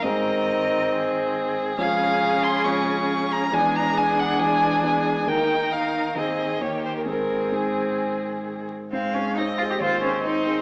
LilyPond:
<<
  \new Staff \with { instrumentName = "Violin" } { \time 4/4 \key aes \major \tempo 4 = 137 ees''2.~ ees''8 r8 | f''4. c'''8 des'''4. bes''8 | gis''8 bes''8 gis''8 ges''8 gis''4 gis''4 | g''4 f''4 ees''4 des''8 c''16 bes'16 |
bes'4 aes'2 r4 | r2 c''4 ees''4 | }
  \new Staff \with { instrumentName = "Violin" } { \time 4/4 \key aes \major bes'2 aes'2~ | aes'1 | gis'1 | bes'2 aes'4 g'4 |
aes'2.~ aes'8 r8 | f''4 ees''4 c''4 c''4 | }
  \new Staff \with { instrumentName = "Grand piano" } { \time 4/4 \key aes \major <aes, aes aes' c''>1 | <f, aes aes' des''>2 <f, aes aes' des''>2 | <e, gis gis' d''>2 <e, gis gis' d''>4 <e, gis gis' d''>4 | <ees, bes ees' bes'>2 <ees, c' ees' aes'>4 <ees, bes ees' g'>4 |
<aes, c' ees' aes'>4 <aes, c' ees' aes'>2. | aes,8 <c' ees' aes'>8 <c' ees' aes'>8 <c' ees' aes'>8 ees,8 <c' ees' aes'>8 <c' ees' aes'>8 <c' ees' aes'>8 | }
  \new Staff \with { instrumentName = "Cello" } { \time 4/4 \key aes \major ees1 | des1 | e1 | ees1~ |
ees2.~ ees8 r8 | c'8 des'8 ees'8 f'16 g'16 f'8 des'8 ees'4 | }
  \new Staff \with { instrumentName = "Viola" } { \time 4/4 \key aes \major c'1 | des'1 | d'1 | ees'2 c'4 bes4 |
c'2.~ c'8 r8 | aes4 c'4 c'2 | }
>>